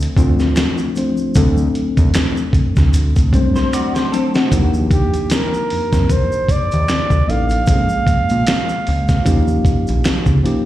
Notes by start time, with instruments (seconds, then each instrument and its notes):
Already playing: tine electric piano F3 A3 C4 D4 A4
0.00 closed hi-hat, shaker
0.16 analog synth bass D2, tine electric piano F3 A3 C4 D4 F4, kick, closed hi-hat, shaker
0.40 snare, shaker
0.56 finger snap, snare, closed hi-hat, shaker
0.78 shaker
0.95 tine electric piano F3 A3 C4 D4 C5, closed hi-hat, shaker
1.17 shaker
1.35 analog synth bass D2, tine electric piano F#3 A3 C4 D4 A4, kick, closed hi-hat, shaker
1.57 shaker
1.75 closed hi-hat
1.97 analog synth bass D#2, kick, closed hi-hat, shaker
2.14 finger snap, snare, closed hi-hat, shaker
2.37 shaker
2.53 analog synth bass D2, kick, closed hi-hat
2.76 analog synth bass D2, kick, snare, shaker
2.94 closed hi-hat, shaker
3.16 kick, closed hi-hat, shaker
3.33 analog synth bass C2, tine electric piano F#3 A3 C4 D4 C5, kick, closed hi-hat, shaker
3.56 clean electric guitar C5, snare, shaker
3.73 clean electric guitar F#4 D5, finger snap, closed hi-hat, shaker
3.95 clean electric guitar C5, snare, shaker
4.11 tine electric piano F#3 A3 C4 D4 C5, clean electric guitar C4 A4, closed hi-hat, shaker
4.35 clean electric guitar A3 F#4, snare, shaker
4.51 analog synth bass D#2, tine electric piano F3 A#3 D4 D#4 F4, kick, closed hi-hat, shaker
4.61 tine electric piano G4
4.74 shaker
4.91 flugelhorn G4, kick, closed hi-hat, shaker
5.14 closed hi-hat, shaker
5.30 flugelhorn A#4, finger snap, snare, closed hi-hat, shaker
5.54 shaker
5.70 analog synth bass F2, open hi-hat
5.93 analog synth bass F2, kick, snare, closed hi-hat, shaker
6.09 flugelhorn C5, kick, closed hi-hat, shaker
6.32 shaker
6.49 analog synth bass D#2, flugelhorn D5, kick, closed hi-hat, shaker
6.72 analog synth bass D#2, closed hi-hat, shaker
6.88 finger snap, snare, closed hi-hat, shaker
7.10 analog synth bass D2, kick, shaker
7.27 analog synth bass A1, tine electric piano F3 A#3 D4 D#4 A4, flugelhorn F5, closed hi-hat
7.49 closed hi-hat, shaker
7.67 analog synth bass A#1, tine electric piano F3 G#3 A#3 C4 G#4, kick, closed hi-hat, shaker
7.75 tine electric piano C#4
7.89 shaker
8.07 analog synth bass A#2, kick, closed hi-hat, shaker
8.29 analog synth bass A#2, closed hi-hat, shaker
8.47 finger snap, snare, closed hi-hat, shaker
8.69 shaker
8.87 analog synth bass C#2, open hi-hat
9.09 kick, snare, closed hi-hat, shaker
9.25 analog synth bass D#2, tine electric piano F3 A#3 C#4 D#4 G4, kick, closed hi-hat, shaker
9.48 shaker
9.65 analog synth bass A#1, kick, closed hi-hat, shaker
9.87 analog synth bass A#1, closed hi-hat, shaker
10.04 finger snap, snare, closed hi-hat, shaker
10.26 analog synth bass C#2, kick, shaker
10.44 tine electric piano F3 A#3 C#4 D#4 G4, closed hi-hat